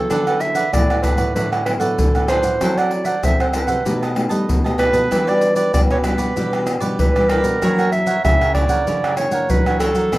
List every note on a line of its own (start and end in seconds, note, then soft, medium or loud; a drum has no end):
0.00 0.51 F#3 medium
0.00 0.52 B3 medium
0.00 0.52 E4 medium
0.00 0.42 A4 loud
0.10 0.64 D3 loud
0.10 0.70 D3 soft
0.10 0.25 D4 medium
0.10 0.25 B4 medium
0.10 0.26 D5 medium
0.10 0.26 F#5 medium
0.10 pandeiro medium
0.10 tamborim medium
0.10 maracas medium
0.10 surdo medium
0.27 0.40 B4 medium
0.27 0.41 D5 medium
0.27 0.40 F#5 medium
0.27 pandeiro soft
0.27 tamborim medium
0.27 maracas soft
0.40 0.73 E5 medium
0.40 muted cavaquinho stroke soft
0.40 pandeiro medium
0.40 maracas medium
0.55 0.88 B4 medium
0.55 0.87 D5 medium
0.55 0.87 F#5 medium
0.55 pandeiro medium
0.55 maracas medium
0.73 1.13 A2 medium
0.73 1.33 A2 medium
0.73 1.00 F#3 soft
0.73 1.00 B3 medium
0.73 1.00 E4 soft
0.73 1.04 D5 medium
0.73 pandeiro medium
0.73 tamborim medium
0.73 maracas medium
0.73 surdo medium
0.90 1.03 B4 soft
0.90 1.03 D5 soft
0.90 1.04 F#5 soft
0.90 pandeiro soft
0.90 tamborim medium
0.90 maracas soft
1.03 1.62 F#3 soft
1.03 1.62 B3 soft
1.03 1.18 D4 soft
1.03 1.62 E4 medium
1.03 1.35 B4 medium
1.03 1.18 B4 soft
1.03 1.17 D5 medium
1.03 1.16 F#5 medium
1.03 pandeiro medium
1.03 tamborim medium
1.03 maracas medium
1.03 surdo medium
1.17 1.32 A2 medium
1.17 1.34 B4 medium
1.17 1.34 D5 medium
1.17 1.33 F#5 medium
1.17 pandeiro medium
1.17 maracas medium
1.35 1.76 A2 medium
1.35 1.96 D3 soft
1.35 1.50 D4 soft
1.35 1.50 B4 medium
1.35 1.50 B4 soft
1.35 1.51 D5 medium
1.35 1.51 F#5 soft
1.35 pandeiro medium
1.35 maracas medium
1.35 surdo medium
1.52 1.66 B4 soft
1.52 1.66 D5 soft
1.52 1.66 F#5 soft
1.52 pandeiro soft
1.52 tamborim medium
1.52 maracas soft
1.66 1.76 F#3 medium
1.66 1.77 B3 medium
1.66 1.77 E4 medium
1.66 1.73 B4 medium
1.66 muted cavaquinho stroke soft
1.66 pandeiro medium
1.66 tamborim medium
1.80 1.95 A2 medium
1.80 2.08 F#3 medium
1.80 2.09 B3 medium
1.80 2.09 E4 medium
1.80 2.25 A4 medium
1.80 2.12 B4 medium
1.80 2.12 D5 medium
1.80 2.11 F#5 medium
1.80 pandeiro soft
1.80 maracas medium
1.98 2.58 A2 soft
1.98 2.38 D3 medium
1.98 pandeiro medium
1.98 maracas medium
1.98 surdo medium
2.15 2.57 F#3 soft
2.15 2.57 B3 medium
2.15 2.57 E4 soft
2.15 2.28 B4 soft
2.15 2.29 D5 soft
2.15 2.29 F#5 soft
2.15 pandeiro soft
2.15 tamborim medium
2.15 maracas soft
2.28 2.44 D4 medium
2.28 2.44 B4 medium
2.28 2.79 C5 medium
2.28 2.44 D5 medium
2.28 2.42 F#5 medium
2.28 pandeiro medium
2.28 tamborim medium
2.28 maracas medium
2.43 2.57 A2 medium
2.43 2.60 B4 soft
2.43 2.60 D5 soft
2.43 2.59 F#5 soft
2.43 pandeiro medium
2.43 maracas medium
2.61 3.14 F#3 loud
2.61 3.21 F#3 medium
2.61 3.02 C4 medium
2.61 2.76 E4 medium
2.61 3.02 E4 soft
2.61 3.02 A4 medium
2.61 2.77 A4 medium
2.61 2.77 C5 medium
2.61 2.77 F#5 medium
2.61 pandeiro medium
2.61 tamborim medium
2.61 maracas medium
2.61 surdo soft
2.78 2.91 A4 soft
2.78 2.91 C5 medium
2.78 3.04 D5 medium
2.78 2.92 F#5 medium
2.78 pandeiro soft
2.78 tamborim medium
2.78 maracas soft
2.91 muted cavaquinho stroke soft
2.91 pandeiro medium
3.04 3.38 A4 soft
3.04 3.38 C5 medium
3.04 3.23 D5 medium
3.04 3.08 E5 medium
3.04 3.37 F#5 medium
3.04 pandeiro medium
3.04 maracas medium
3.23 3.84 F#3 soft
3.23 3.64 C4 medium
3.23 3.51 C4 soft
3.23 3.51 E4 soft
3.23 3.51 A4 medium
3.23 3.39 E5 medium
3.23 pandeiro medium
3.23 tamborim medium
3.23 maracas medium
3.23 surdo medium
3.40 3.52 A4 soft
3.40 3.47 C5 medium
3.40 3.53 C5 soft
3.40 3.54 F#5 soft
3.40 pandeiro soft
3.40 tamborim medium
3.40 maracas soft
3.53 3.75 C4 medium
3.53 3.69 E4 medium
3.53 3.75 E4 medium
3.53 3.68 A4 soft
3.53 3.75 A4 medium
3.53 4.13 B4 medium
3.53 3.67 C5 medium
3.53 3.66 F#5 medium
3.53 pandeiro medium
3.53 tamborim medium
3.53 maracas medium
3.67 3.82 C3 medium
3.67 3.84 A4 medium
3.67 3.84 C5 medium
3.67 3.83 F#5 medium
3.67 pandeiro medium
3.67 maracas medium
3.85 4.26 B2 medium
3.85 4.46 B2 medium
3.85 4.13 A3 medium
3.85 4.13 D#4 medium
3.85 4.00 G4 soft
3.85 4.13 G4 medium
3.85 4.01 B4 medium
3.85 4.01 D#5 soft
3.85 4.01 A5 medium
3.85 pandeiro medium
3.85 maracas medium
3.85 surdo medium
4.02 4.15 B4 soft
4.02 4.15 D#5 soft
4.02 4.15 A5 soft
4.02 pandeiro soft
4.02 tamborim medium
4.02 maracas soft
4.15 4.28 A3 medium
4.15 4.28 D#4 medium
4.15 4.28 G4 medium
4.15 muted cavaquinho stroke soft
4.15 pandeiro medium
4.15 tamborim medium
4.29 4.45 G3 medium
4.29 4.59 A3 medium
4.29 4.59 D#4 medium
4.29 4.59 G4 medium
4.29 4.62 B4 medium
4.29 4.62 D#5 medium
4.29 4.61 A5 medium
4.29 pandeiro medium
4.29 maracas medium
4.49 4.89 B2 medium
4.49 5.09 B2 medium
4.49 pandeiro medium
4.49 maracas medium
4.49 surdo medium
4.64 5.07 A3 medium
4.64 5.08 D#4 medium
4.64 5.08 G4 medium
4.64 4.77 B4 soft
4.64 4.78 D#5 soft
4.64 4.79 A5 soft
4.64 pandeiro soft
4.64 tamborim medium
4.64 maracas soft
4.78 4.94 G4 medium
4.78 4.93 B4 medium
4.78 5.30 B4 loud
4.78 4.93 D#5 medium
4.78 4.92 A5 medium
4.78 pandeiro medium
4.78 tamborim medium
4.93 5.08 B2 medium
4.93 5.10 B4 soft
4.93 5.09 D#5 soft
4.93 5.09 A5 soft
4.93 pandeiro medium
4.93 maracas medium
5.11 5.65 E3 medium
5.11 5.71 E3 soft
5.11 5.21 G3 medium
5.11 5.21 D4 medium
5.11 5.26 E4 medium
5.11 5.22 F#4 medium
5.11 5.26 G4 medium
5.11 5.26 B4 medium
5.11 5.26 D5 medium
5.11 pandeiro medium
5.11 tamborim medium
5.11 maracas medium
5.11 surdo medium
5.27 5.70 G3 medium
5.27 5.70 D4 medium
5.27 5.70 F#4 medium
5.27 5.40 G4 medium
5.27 5.41 B4 medium
5.27 5.41 D5 medium
5.27 5.56 D5 loud
5.27 pandeiro soft
5.27 tamborim medium
5.27 maracas soft
5.41 muted cavaquinho stroke soft
5.41 pandeiro medium
5.41 maracas medium
5.56 5.88 G4 medium
5.56 5.88 B4 medium
5.56 5.87 D5 medium
5.56 5.72 D5 medium
5.56 pandeiro medium
5.56 maracas medium
5.74 6.14 B2 medium
5.74 6.34 B2 soft
5.74 5.93 G3 soft
5.74 5.93 D4 soft
5.74 5.93 F#4 medium
5.74 5.81 D5 medium
5.74 pandeiro medium
5.74 tamborim medium
5.74 maracas medium
5.74 surdo loud
5.91 6.03 G4 soft
5.91 6.04 B4 soft
5.91 5.98 C#5 medium
5.91 6.05 D5 soft
5.91 pandeiro soft
5.91 tamborim medium
5.91 maracas soft
6.04 6.31 G3 soft
6.04 6.31 D4 soft
6.04 6.19 E4 soft
6.04 6.32 F#4 medium
6.04 6.19 G4 soft
6.04 6.64 B4 medium
6.04 6.18 B4 medium
6.04 6.17 D5 medium
6.04 pandeiro medium
6.04 tamborim medium
6.04 maracas medium
6.18 6.33 B2 medium
6.18 6.35 G4 medium
6.18 6.34 B4 medium
6.18 6.34 D5 medium
6.18 pandeiro medium
6.18 maracas medium
6.36 6.77 B2 medium
6.36 6.96 E3 medium
6.36 6.66 G3 medium
6.36 6.66 D4 medium
6.36 6.51 E4 soft
6.36 6.67 F#4 medium
6.36 6.51 G4 medium
6.36 6.52 B4 soft
6.36 6.52 D5 soft
6.36 pandeiro medium
6.36 maracas medium
6.36 surdo soft
6.53 6.66 G4 soft
6.53 6.66 B4 soft
6.53 6.66 D5 soft
6.53 pandeiro soft
6.53 tamborim medium
6.53 maracas soft
6.66 muted cavaquinho stroke soft
6.66 pandeiro medium
6.66 tamborim medium
6.66 maracas medium
6.80 6.96 B2 medium
6.80 7.09 G3 medium
6.80 7.09 D4 medium
6.80 7.09 F#4 medium
6.80 7.13 G4 medium
6.80 7.13 B4 medium
6.80 7.12 D5 medium
6.80 pandeiro medium
6.80 maracas medium
6.99 7.59 B2 medium
6.99 7.39 E3 medium
6.99 7.31 B4 medium
6.99 pandeiro medium
6.99 maracas medium
6.99 surdo medium
7.15 7.60 G3 medium
7.15 7.60 D4 medium
7.15 7.61 F#4 medium
7.15 7.29 G4 soft
7.15 7.30 B4 soft
7.15 7.30 D5 medium
7.15 pandeiro soft
7.15 tamborim medium
7.15 maracas soft
7.29 7.44 E4 medium
7.29 7.45 G4 medium
7.29 7.91 A#4 loud
7.29 7.44 B4 medium
7.29 7.43 D5 medium
7.29 pandeiro medium
7.29 tamborim medium
7.43 7.58 B2 medium
7.43 7.61 G4 soft
7.43 7.60 B4 soft
7.43 7.59 D5 soft
7.43 pandeiro medium
7.43 maracas medium
7.62 8.21 F#2 soft
7.62 8.02 E3 soft
7.62 8.15 F#3 loud
7.62 8.03 A#3 medium
7.62 8.03 D4 medium
7.62 7.77 E4 medium
7.62 7.77 A#4 medium
7.62 7.77 C#5 medium
7.62 7.77 F#5 medium
7.62 pandeiro medium
7.62 tamborim medium
7.62 maracas medium
7.62 surdo soft
7.78 7.91 A#4 medium
7.78 7.92 C#5 medium
7.78 7.92 F#5 medium
7.78 pandeiro soft
7.78 tamborim medium
7.78 maracas soft
7.92 8.22 E5 medium
7.92 muted cavaquinho stroke soft
7.92 pandeiro medium
7.92 maracas medium
8.07 8.39 A#4 soft
8.07 8.39 C#5 medium
8.07 8.38 F#5 medium
8.07 pandeiro medium
8.07 maracas medium
8.25 8.65 C#3 medium
8.25 8.84 C#3 soft
8.25 8.43 E3 soft
8.25 8.44 A#3 medium
8.25 8.44 D4 medium
8.25 8.54 E5 loud
8.25 pandeiro medium
8.25 tamborim medium
8.25 maracas medium
8.25 surdo loud
8.41 8.54 A#4 soft
8.41 8.55 C#5 soft
8.41 8.55 F#5 soft
8.41 pandeiro soft
8.41 tamborim medium
8.41 maracas soft
8.55 8.96 E3 soft
8.55 8.96 A#3 soft
8.55 8.96 D4 medium
8.55 8.70 E4 medium
8.55 8.70 A#4 soft
8.55 8.69 C#5 medium
8.55 9.14 D5 medium
8.55 8.68 F#5 medium
8.55 pandeiro medium
8.55 tamborim medium
8.55 surdo medium
8.69 8.83 C#3 medium
8.69 8.86 A#4 medium
8.69 8.85 C#5 medium
8.69 8.85 F#5 medium
8.69 pandeiro medium
8.69 maracas medium
8.87 9.47 F#2 medium
8.87 9.27 C#3 medium
8.87 9.02 E4 soft
8.87 9.02 A#4 soft
8.87 9.03 C#5 soft
8.87 9.03 F#5 soft
8.87 pandeiro medium
8.87 maracas medium
8.87 surdo medium
9.04 9.16 A#4 soft
9.04 9.17 C#5 soft
9.04 9.17 F#5 soft
9.04 pandeiro soft
9.04 tamborim medium
9.04 maracas soft
9.17 9.28 E3 medium
9.17 9.28 A#3 soft
9.17 9.28 D4 medium
9.17 9.52 C#5 medium
9.17 muted cavaquinho stroke soft
9.17 pandeiro medium
9.17 tamborim medium
9.17 maracas medium
9.31 9.46 C#3 medium
9.31 9.59 E3 medium
9.31 9.60 A#3 medium
9.31 9.60 D4 medium
9.31 9.64 A#4 medium
9.31 9.64 C#5 medium
9.31 9.63 F#5 medium
9.31 pandeiro medium
9.31 maracas medium
9.49 9.89 F#3 medium
9.49 9.79 B4 medium
9.49 pandeiro medium
9.49 maracas medium
9.49 surdo medium
9.66 10.08 E3 medium
9.66 10.09 A#3 medium
9.66 10.09 D4 medium
9.66 9.80 A#4 soft
9.66 9.80 C#5 soft
9.66 9.81 F#5 soft
9.66 pandeiro soft
9.66 tamborim medium
9.66 maracas soft
9.80 9.95 E4 medium
9.80 10.18 A4 loud
9.80 9.95 A#4 medium
9.80 9.95 C#5 medium
9.80 9.94 F#5 medium
9.80 pandeiro medium
9.80 tamborim medium
9.80 maracas medium
9.94 10.08 F#3 medium
9.94 10.12 A#4 soft
9.94 10.11 C#5 soft
9.94 10.10 F#5 soft
9.94 pandeiro soft
9.94 maracas medium
10.12 10.18 B2 medium
10.12 10.18 F#3 medium
10.12 10.18 A3 soft
10.12 10.18 D4 medium
10.12 10.18 A4 medium
10.12 10.18 B4 medium
10.12 10.18 D5 medium
10.12 pandeiro medium
10.12 tamborim medium
10.12 maracas medium
10.12 surdo medium